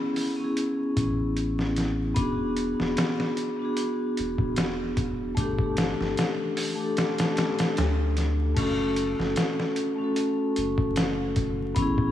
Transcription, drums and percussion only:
0.16 open hi-hat
0.57 closed hi-hat
0.97 kick, closed hi-hat
1.37 closed hi-hat
1.59 snare
1.76 snare, closed hi-hat
2.16 kick, closed hi-hat
2.57 closed hi-hat
2.80 snare
2.97 snare, closed hi-hat
3.20 snare
3.37 closed hi-hat
3.77 closed hi-hat
4.17 closed hi-hat
4.38 kick
4.56 snare, closed hi-hat
4.97 kick, closed hi-hat
5.37 kick, closed hi-hat
5.59 kick
5.77 snare, closed hi-hat
6.01 snare
6.17 snare, closed hi-hat
6.57 open hi-hat
6.97 snare, closed hi-hat
7.18 snare, closed hi-hat
7.37 snare, closed hi-hat
7.59 snare, closed hi-hat
7.77 snare, closed hi-hat
8.17 snare, closed hi-hat
8.57 kick, closed hi-hat, crash
8.96 closed hi-hat
9.20 snare
9.36 snare, closed hi-hat
9.60 snare
9.76 closed hi-hat
10.16 closed hi-hat
10.56 closed hi-hat
10.78 kick
10.96 snare, closed hi-hat
11.36 kick, closed hi-hat
11.76 kick, closed hi-hat
11.98 kick

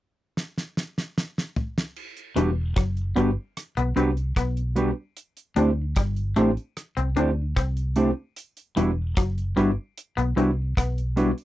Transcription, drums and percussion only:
0.37 snare
0.58 snare
0.77 snare
0.98 snare
1.18 snare
1.38 snare
1.56 floor tom
1.78 snare
1.96 crash
2.17 closed hi-hat
2.37 closed hi-hat
2.76 kick, cross-stick, closed hi-hat
2.97 closed hi-hat
3.17 closed hi-hat
3.57 cross-stick, closed hi-hat
3.77 closed hi-hat
3.97 closed hi-hat
4.17 closed hi-hat
4.36 kick, cross-stick, closed hi-hat
4.57 closed hi-hat
4.76 closed hi-hat
5.17 closed hi-hat
5.37 closed hi-hat
5.56 closed hi-hat
5.96 kick, cross-stick, closed hi-hat
6.16 closed hi-hat
6.36 closed hi-hat
6.57 closed hi-hat
6.77 cross-stick, closed hi-hat
6.97 closed hi-hat
7.17 closed hi-hat
7.57 kick, cross-stick, closed hi-hat
7.77 closed hi-hat
7.96 closed hi-hat
8.36 closed hi-hat
8.57 closed hi-hat
8.77 closed hi-hat
9.17 kick, cross-stick, closed hi-hat
9.38 closed hi-hat
9.57 closed hi-hat
9.98 closed hi-hat
10.18 closed hi-hat
10.38 closed hi-hat
10.77 kick, cross-stick, closed hi-hat
10.98 closed hi-hat
11.17 closed hi-hat
11.38 closed hi-hat

